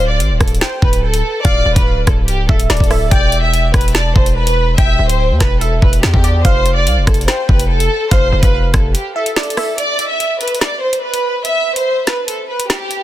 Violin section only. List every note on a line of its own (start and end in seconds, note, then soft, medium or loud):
0.10 0.39 D5 medium
0.41 0.57 A4 medium
0.62 0.78 C5 medium
0.83 0.99 B4 medium
1.03 1.42 A4 medium
1.44 1.74 D5 loud
1.76 2.06 B4 medium
2.07 2.23 A4 medium
2.28 2.44 G4 loud
2.49 2.65 A4 medium
2.70 3.09 A4 medium
3.11 3.41 D5 loud
3.43 3.72 E5 medium
3.74 3.90 B4 medium
3.95 4.11 D5 medium
4.16 4.32 C5 medium
4.36 4.75 B4 medium
4.78 5.07 E5 loud
5.09 5.39 C5 medium
5.41 5.57 B4 medium
5.61 5.77 A4 medium
5.82 5.98 B4 medium
6.03 6.42 G4 medium
6.45 6.74 C5 loud
6.76 7.05 D5 medium
7.08 7.24 A4 medium
7.28 7.44 C5 medium
7.49 7.65 B4 medium
7.70 8.09 A4 loud
8.12 8.41 C5 loud
8.43 8.72 B4 medium
8.74 8.90 A4 medium
8.94 9.11 G4 medium
9.16 9.32 A4 medium
9.36 9.76 A4 medium
9.78 10.08 D5 loud
10.09 10.39 E5 medium
10.40 10.56 B4 medium
10.62 10.78 D5 medium
10.82 10.98 C5 medium
11.03 11.42 B4 medium
11.45 11.74 E5 loud
11.77 12.06 C5 medium
12.07 12.23 B4 medium
12.28 12.44 A4 medium
12.49 12.65 B4 medium
12.69 13.03 G4 medium